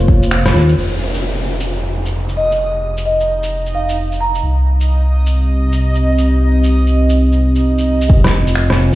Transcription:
0.00 0.45 F1 medium
0.00 1.36 A#3 medium
0.00 5.62 F4 medium
0.00 8.10 C5 medium
0.00 0.77 C#5 medium
0.00 shaker soft
0.08 kick loud
0.23 shaker medium
0.31 finger snap loud
0.45 0.53 F1 loud
0.45 cross-stick medium
0.45 shaker soft
0.54 0.75 D#2 medium
0.54 cross-stick soft
0.68 shaker medium
0.76 4.42 F1 medium
0.76 8.11 D#4 medium
0.76 8.10 D#5 medium
0.76 downlifter medium
1.14 shaker soft
1.37 4.43 G#5 medium
1.60 5.56 G5 medium
1.60 shaker medium
2.06 shaker soft
2.29 shaker soft
2.37 2.61 D#5 medium
2.52 shaker soft
2.97 shaker medium
3.05 3.43 D#5 medium
3.20 shaker soft
3.43 shaker medium
3.66 shaker soft
3.75 3.99 F5 medium
3.89 shaker medium
4.12 shaker soft
4.20 4.49 A#5 medium
4.35 shaker medium
4.43 8.08 C2 medium
4.43 8.95 C4 medium
4.54 8.10 G4 medium
4.80 shaker medium
5.26 shaker medium
5.72 8.95 D#5 medium
5.72 shaker soft
5.95 shaker soft
6.18 shaker medium
6.64 shaker soft
6.87 shaker soft
7.09 shaker medium
7.32 shaker soft
7.55 shaker soft
7.78 shaker soft
8.01 shaker medium
8.10 8.77 F1 medium
8.10 8.95 F4 medium
8.10 kick loud
8.24 cross-stick medium
8.24 shaker soft
8.33 8.95 C5 medium
8.41 8.95 G#5 medium
8.47 shaker medium
8.55 finger snap loud
8.61 8.95 G5 medium
8.70 cross-stick medium
8.78 8.92 F1 medium

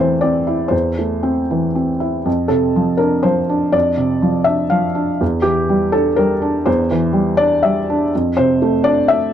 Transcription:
0.00 0.69 E2 soft
0.00 0.38 E3 soft
0.00 0.75 A3 soft
0.00 0.13 C4 soft
0.00 0.74 A4 medium
0.00 0.22 C5 medium
0.21 0.63 C4 soft
0.21 0.72 D5 medium
0.47 0.88 E4 soft
0.68 2.22 E2 soft
0.68 1.74 C5 medium
0.99 1.40 A3 soft
1.23 1.65 C4 soft
1.51 1.91 E3 soft
1.75 2.16 C4 soft
2.00 2.26 E4 soft
2.25 3.70 F2 soft
2.48 2.90 C3 soft
2.48 2.99 A4 medium
2.76 3.15 F3 soft
2.97 3.39 D4 soft
2.97 3.23 A#4 medium
3.23 3.64 F3 soft
3.23 3.73 C5 medium
3.49 3.89 D4 soft
3.72 5.16 F2 soft
3.72 4.46 D5 medium
3.97 4.37 C3 soft
4.22 4.62 F3 soft
4.44 4.86 D4 soft
4.44 4.70 E5 medium
4.70 5.11 F3 soft
4.70 5.20 F5 medium
4.95 5.20 D4 soft
5.21 6.63 E2 soft
5.42 5.83 E3 soft
5.42 5.92 G4 medium
5.69 6.09 G3 soft
5.92 6.33 D4 soft
5.92 6.17 A4 medium
6.16 6.57 G3 soft
6.16 6.66 A#4 medium
6.42 6.81 D4 soft
6.66 8.08 E2 medium
6.66 7.39 C5 medium
6.91 7.30 E3 soft
7.13 7.53 G3 soft
7.37 7.78 D4 soft
7.37 7.63 D5 medium
7.63 8.02 G3 soft
7.63 8.11 E5 medium
7.90 8.13 D4 soft
8.15 9.33 F2 soft
8.37 8.75 C3 soft
8.37 8.84 C5 medium
8.62 8.99 A3 medium
8.84 9.23 D4 soft
8.84 9.08 D5 medium
9.08 9.33 A3 soft
9.08 9.33 E5 medium

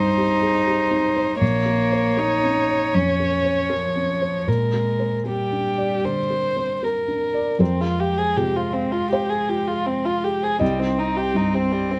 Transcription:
0.00 1.44 C2 medium
0.00 0.33 G2 soft
0.00 0.91 D#4 soft
0.00 1.40 D#4 medium
0.00 0.18 G4 soft
0.00 0.42 G#4 soft
0.00 1.37 C5 medium
0.18 0.57 G4 soft
0.42 0.67 G#4 soft
0.67 1.07 G4 soft
0.91 1.31 D#4 soft
1.17 1.41 C5 soft
1.40 2.90 A#1 soft
1.40 2.20 A#3 medium
1.40 4.50 C#5 soft
1.66 2.08 A#4 soft
1.92 2.18 C5 soft
2.17 2.96 D#4 medium
2.17 2.58 A#4 soft
2.43 2.84 C#4 soft
2.69 3.09 C#5 soft
2.94 3.34 F2 soft
2.94 3.71 C#4 medium
3.20 3.60 A#4 soft
3.45 3.70 C5 soft
3.70 4.49 F3 soft
3.70 4.11 A#4 soft
3.95 4.37 C#4 soft
4.22 4.48 C5 soft
4.47 6.01 A#2 soft
4.47 5.29 G#3 medium
4.47 5.19 A#4 soft
4.74 5.16 A#4 soft
4.99 5.26 C5 soft
5.26 6.83 G3 soft
5.26 6.06 G4 soft
5.26 5.68 A#4 soft
5.53 5.94 D4 soft
5.78 6.20 D5 soft
6.04 6.46 D3 soft
6.04 6.85 C5 medium
6.30 6.72 A#4 soft
6.57 6.82 C5 soft
6.83 7.24 A#4 soft
6.83 7.61 A#4 soft
7.08 7.50 D4 soft
7.34 7.60 D5 soft
7.59 10.56 F2 soft
7.59 10.62 G#3 soft
7.59 7.82 C4 soft
7.59 7.72 F4 soft
7.59 8.32 A#4 medium
7.80 8.01 F4 soft
7.80 7.91 G#4 soft
7.99 8.19 G4 soft
7.99 8.10 F5 soft
8.18 8.38 G#4 soft
8.18 8.29 C5 soft
8.36 10.61 C3 soft
8.36 8.48 F4 medium
8.36 8.57 G4 soft
8.36 9.07 G#4 soft
8.56 8.75 F4 soft
8.56 8.67 C5 soft
8.73 8.93 C4 soft
8.73 8.86 F5 soft
8.92 9.10 F4 soft
8.92 9.04 F4 medium
9.10 9.31 G4 medium
9.10 10.58 C5 medium
9.10 9.23 F5 soft
9.29 9.50 G#4 soft
9.29 9.42 G#4 soft
9.49 9.60 F4 medium
9.49 9.69 G4 soft
9.67 9.88 F4 soft
9.67 9.79 G#4 soft
9.86 10.06 C4 soft
10.05 10.25 F4 soft
10.05 10.17 F4 medium
10.24 10.45 G4 soft
10.24 10.35 G#4 soft
10.42 10.61 G#4 soft
10.42 10.54 C5 soft
10.59 11.99 C2 medium
10.59 10.81 G3 medium
10.59 10.72 C4 medium
10.59 11.99 C4 medium
10.59 11.99 D#5 medium
10.79 11.00 C4 soft
10.79 10.91 D#4 soft
10.98 11.18 D#4 soft
10.98 11.09 C5 soft
11.16 11.27 G4 soft
11.16 11.38 G4 medium
11.34 11.99 G2 soft
11.34 11.46 C4 medium
11.34 11.56 D#4 soft
11.53 11.73 C4 soft
11.53 11.64 G4 soft
11.72 11.92 G3 soft
11.72 11.83 C5 soft
11.90 11.99 C4 medium
11.90 11.99 C4 soft

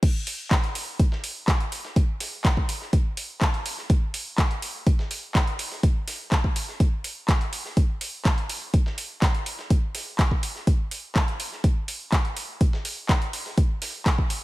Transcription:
0.03 kick loud
0.03 closed hi-hat medium
0.03 crash loud
0.27 closed hi-hat medium
0.27 open hi-hat loud
0.51 kick loud
0.51 snare loud
0.51 clap loud
0.51 closed hi-hat medium
0.64 closed hi-hat soft
0.75 closed hi-hat medium
0.75 open hi-hat loud
0.99 kick loud
0.99 closed hi-hat medium
1.12 snare medium
1.24 closed hi-hat medium
1.24 open hi-hat loud
1.48 kick loud
1.48 snare loud
1.48 clap loud
1.48 closed hi-hat medium
1.60 closed hi-hat soft
1.72 closed hi-hat medium
1.72 open hi-hat loud
1.85 snare soft
1.96 kick loud
1.96 closed hi-hat medium
2.20 snare soft
2.20 closed hi-hat medium
2.20 open hi-hat loud
2.45 kick loud
2.45 snare loud
2.45 clap loud
2.45 closed hi-hat medium
2.57 kick medium
2.69 closed hi-hat medium
2.69 open hi-hat loud
2.81 snare soft
2.93 kick loud
2.93 closed hi-hat medium
3.17 closed hi-hat medium
3.17 open hi-hat loud
3.41 kick loud
3.41 snare loud
3.41 clap loud
3.41 closed hi-hat medium
3.54 closed hi-hat soft
3.66 closed hi-hat medium
3.66 open hi-hat loud
3.78 snare soft
3.90 kick loud
3.90 closed hi-hat medium
4.14 closed hi-hat medium
4.14 open hi-hat loud
4.38 kick loud
4.38 snare loud
4.38 clap loud
4.38 closed hi-hat medium
4.51 closed hi-hat soft
4.62 closed hi-hat medium
4.62 open hi-hat loud
4.87 kick loud
4.87 closed hi-hat medium
4.99 snare medium
5.11 closed hi-hat medium
5.11 open hi-hat loud
5.35 kick loud
5.35 snare loud
5.35 clap loud
5.35 closed hi-hat medium
5.47 closed hi-hat soft
5.59 closed hi-hat medium
5.59 open hi-hat loud
5.72 snare soft
5.83 kick loud
5.83 closed hi-hat medium
6.08 snare soft
6.08 closed hi-hat medium
6.08 open hi-hat loud
6.32 kick loud
6.32 snare loud
6.32 clap loud
6.32 closed hi-hat medium
6.44 kick medium
6.56 closed hi-hat medium
6.56 open hi-hat loud
6.68 snare soft
6.80 kick loud
6.80 closed hi-hat medium
7.04 closed hi-hat medium
7.04 open hi-hat loud
7.28 kick loud
7.28 snare loud
7.28 clap loud
7.28 closed hi-hat medium
7.41 closed hi-hat soft
7.53 closed hi-hat medium
7.53 open hi-hat loud
7.65 snare soft
7.77 kick loud
7.77 closed hi-hat medium
8.01 closed hi-hat medium
8.01 open hi-hat loud
8.25 kick loud
8.25 snare loud
8.25 clap loud
8.25 closed hi-hat medium
8.38 closed hi-hat soft
8.49 closed hi-hat medium
8.49 open hi-hat loud
8.74 kick loud
8.74 closed hi-hat medium
8.86 snare medium
8.98 closed hi-hat medium
8.98 open hi-hat loud
9.22 kick loud
9.22 snare loud
9.22 clap loud
9.22 closed hi-hat medium
9.35 closed hi-hat soft
9.46 closed hi-hat medium
9.46 open hi-hat loud
9.59 snare medium
9.70 kick loud
9.70 closed hi-hat loud
9.95 snare soft
9.95 closed hi-hat medium
9.95 open hi-hat loud
10.19 kick loud
10.19 snare loud
10.19 clap loud
10.19 closed hi-hat medium
10.31 kick medium
10.43 closed hi-hat medium
10.43 open hi-hat loud
10.56 snare soft
10.67 kick loud
10.67 closed hi-hat medium
10.91 closed hi-hat medium
10.91 open hi-hat loud
11.16 kick loud
11.16 snare loud
11.16 clap loud
11.16 closed hi-hat medium
11.28 closed hi-hat soft
11.40 closed hi-hat medium
11.40 open hi-hat loud
11.52 snare soft
11.64 kick loud
11.64 closed hi-hat medium
11.88 closed hi-hat medium
11.88 open hi-hat loud
12.12 kick loud
12.12 snare loud
12.12 clap loud
12.12 closed hi-hat medium
12.25 closed hi-hat soft
12.37 closed hi-hat medium
12.37 open hi-hat loud
12.61 kick loud
12.61 closed hi-hat medium
12.73 snare medium
12.85 closed hi-hat medium
12.85 open hi-hat loud
13.09 kick loud
13.09 snare loud
13.09 clap loud
13.09 closed hi-hat medium
13.22 closed hi-hat soft
13.33 closed hi-hat medium
13.33 open hi-hat loud
13.46 snare medium
13.58 kick loud
13.58 closed hi-hat medium
13.82 snare soft
13.82 closed hi-hat medium
13.82 open hi-hat loud
14.06 kick loud
14.06 snare loud
14.06 clap loud
14.06 closed hi-hat medium
14.18 kick medium
14.30 closed hi-hat medium
14.30 open hi-hat loud

